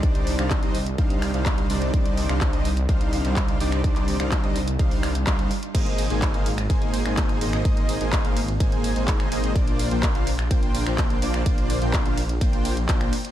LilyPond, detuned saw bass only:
\new Staff \with { instrumentName = "Detuned saw bass" } { \clef bass \time 4/4 \key aes \lydian \tempo 4 = 126 c,8. c,8 c,8. c,8. c,8. c,8 | c,8. c,8 c,8. c,8. c,8. c,8 | c,8. c,8 c,8. c,4 c,8 r8 | aes,,8. aes,,8 aes,,8. aes,,8. aes,,8. aes,,8 |
aes,,8. aes,,8 aes,,8. aes,,8. aes,,8. aes,,8 | bes,,8. bes,,8 bes,,8. bes,,8. bes,,8. bes,,8 | bes,,8. bes,,8 bes,,8. bes,,4 bes,,8 r8 | }